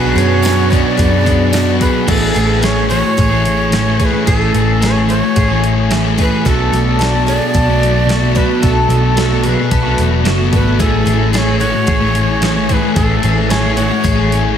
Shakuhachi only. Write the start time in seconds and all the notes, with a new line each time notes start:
Already playing: B4
0.18 C#5
0.72 D5
1.81 B4
2.09 A4
2.63 C#5
2.89 C#5
4.00 C#5
4.05 B4
4.27 G#4
4.38 A4
4.81 C#5
5.08 C#5
6.21 B4
6.47 A4
7.03 D5
7.27 D5
8.37 B4
8.63 A4
9.44 B4
10.54 B4
10.80 A4
11.33 D5
11.38 C#5
11.59 C#5
12.69 C#5
12.73 B4
12.95 A4
13.50 C#5
13.75 C#5